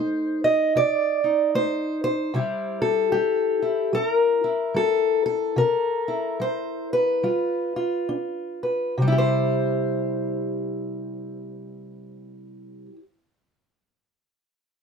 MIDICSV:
0, 0, Header, 1, 2, 480
1, 0, Start_track
1, 0, Tempo, 794702
1, 1416, Time_signature, 4, 2, 24, 8
1, 2863, Tempo, 832178
1, 4303, Tempo, 875912
1, 5263, Tempo, 898204
1, 8379, End_track
2, 0, Start_track
2, 0, Title_t, "Steel-string acoustic guitar"
2, 0, Program_c, 0, 25
2, 0, Note_on_c, 0, 57, 54
2, 0, Note_on_c, 0, 63, 50
2, 0, Note_on_c, 0, 72, 100
2, 265, Note_off_c, 0, 72, 0
2, 267, Note_on_c, 0, 75, 86
2, 424, Note_off_c, 0, 57, 0
2, 455, Note_on_c, 0, 48, 54
2, 458, Note_off_c, 0, 75, 0
2, 464, Note_on_c, 0, 74, 99
2, 742, Note_off_c, 0, 63, 0
2, 749, Note_on_c, 0, 63, 40
2, 898, Note_off_c, 0, 48, 0
2, 935, Note_on_c, 0, 57, 50
2, 936, Note_off_c, 0, 74, 0
2, 938, Note_on_c, 0, 72, 95
2, 1224, Note_off_c, 0, 72, 0
2, 1232, Note_on_c, 0, 72, 91
2, 1377, Note_off_c, 0, 57, 0
2, 1393, Note_off_c, 0, 63, 0
2, 1412, Note_on_c, 0, 48, 64
2, 1416, Note_on_c, 0, 55, 50
2, 1423, Note_on_c, 0, 64, 48
2, 1427, Note_on_c, 0, 67, 47
2, 1699, Note_off_c, 0, 72, 0
2, 1701, Note_on_c, 0, 69, 80
2, 1855, Note_off_c, 0, 48, 0
2, 1882, Note_off_c, 0, 67, 0
2, 1885, Note_on_c, 0, 67, 74
2, 1894, Note_off_c, 0, 55, 0
2, 1896, Note_on_c, 0, 55, 57
2, 2181, Note_off_c, 0, 64, 0
2, 2189, Note_on_c, 0, 64, 40
2, 2340, Note_off_c, 0, 55, 0
2, 2372, Note_off_c, 0, 67, 0
2, 2373, Note_on_c, 0, 55, 56
2, 2375, Note_off_c, 0, 69, 0
2, 2384, Note_on_c, 0, 69, 85
2, 2468, Note_off_c, 0, 69, 0
2, 2468, Note_on_c, 0, 70, 85
2, 2673, Note_off_c, 0, 64, 0
2, 2682, Note_on_c, 0, 64, 43
2, 2824, Note_off_c, 0, 55, 0
2, 2865, Note_on_c, 0, 55, 55
2, 2877, Note_on_c, 0, 69, 83
2, 3154, Note_off_c, 0, 69, 0
2, 3161, Note_on_c, 0, 69, 77
2, 3299, Note_off_c, 0, 55, 0
2, 3319, Note_off_c, 0, 64, 0
2, 3337, Note_on_c, 0, 48, 70
2, 3339, Note_off_c, 0, 70, 0
2, 3347, Note_on_c, 0, 70, 86
2, 3636, Note_on_c, 0, 64, 43
2, 3778, Note_off_c, 0, 48, 0
2, 3819, Note_on_c, 0, 55, 58
2, 3821, Note_off_c, 0, 69, 0
2, 3829, Note_on_c, 0, 72, 83
2, 4118, Note_off_c, 0, 72, 0
2, 4126, Note_on_c, 0, 71, 77
2, 4267, Note_off_c, 0, 55, 0
2, 4285, Note_off_c, 0, 64, 0
2, 4301, Note_on_c, 0, 55, 61
2, 4302, Note_off_c, 0, 70, 0
2, 4305, Note_on_c, 0, 65, 43
2, 4585, Note_off_c, 0, 65, 0
2, 4591, Note_on_c, 0, 65, 45
2, 4739, Note_off_c, 0, 55, 0
2, 4770, Note_on_c, 0, 62, 54
2, 5060, Note_off_c, 0, 71, 0
2, 5067, Note_on_c, 0, 71, 43
2, 5220, Note_off_c, 0, 62, 0
2, 5238, Note_off_c, 0, 71, 0
2, 5240, Note_off_c, 0, 65, 0
2, 5256, Note_on_c, 0, 48, 62
2, 5280, Note_on_c, 0, 55, 63
2, 5310, Note_on_c, 0, 64, 56
2, 5335, Note_on_c, 0, 67, 59
2, 5367, Note_on_c, 0, 72, 74
2, 7330, Note_off_c, 0, 48, 0
2, 7354, Note_off_c, 0, 55, 0
2, 7384, Note_off_c, 0, 64, 0
2, 7409, Note_off_c, 0, 67, 0
2, 7420, Note_off_c, 0, 72, 0
2, 8379, End_track
0, 0, End_of_file